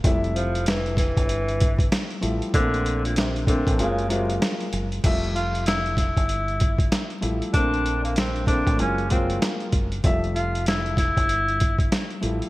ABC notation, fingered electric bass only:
X:1
M:4/4
L:1/16
Q:"Swing 16ths" 1/4=96
K:F
V:1 name="Fingered electric bass" clef=bass
F,,,6- F,,, G,,,4- G,,, z2 A,,, z | B,,,6- B,,, A,,, _G,,,4 z2 G,,,2 | F,,,6- F,,, G,,,4- G,,, z2 A,,, z | B,,,6- B,,, A,,, _G,,,4 z2 G,,,2 |
F,,,6- F,,, G,,,4- G,,, z2 A,,, z |]